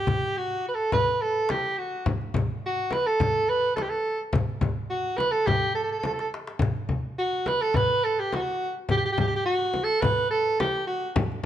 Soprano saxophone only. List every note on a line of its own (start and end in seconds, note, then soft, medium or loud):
0.00 0.39 G4 medium
0.37 0.68 F#4 medium
0.68 0.76 B4 medium
0.75 0.93 A4 medium
0.93 1.23 B4 loud
1.22 1.52 A4 medium
1.51 1.80 G4 medium
1.78 2.07 F#4 medium
2.66 2.95 F#4 medium
2.93 3.08 B4 medium
3.07 3.51 A4 loud
3.49 3.75 B4 medium
3.76 3.84 A4 medium
3.82 3.91 G4 medium
3.90 4.19 A4 medium
4.90 5.19 F#4 medium
5.17 5.33 B4 medium
5.32 5.48 A4 medium
5.46 5.74 G4 medium
5.75 5.83 A4 medium
5.84 5.91 A4 medium
5.92 5.98 A4 medium
5.99 6.06 A4 soft
6.06 6.13 A4 medium
6.13 6.20 A4 medium
6.20 6.28 A4 medium
7.18 7.49 F#4 medium
7.47 7.63 B4 medium
7.61 7.77 A4 medium
7.76 8.06 B4 loud
8.04 8.21 A4 medium
8.20 8.36 G4 medium
8.35 8.76 F#4 medium
8.91 8.96 G4 medium
8.97 9.04 G4 medium
9.05 9.12 G4 medium
9.13 9.19 G4 medium
9.20 9.27 G4 medium
9.28 9.34 G4 medium
9.36 9.42 G4 medium
9.46 9.85 F#4 medium
9.83 10.03 A4 medium
10.01 10.30 B4 loud
10.31 10.57 A4 medium
10.60 10.86 G4 medium
10.87 11.14 F#4 medium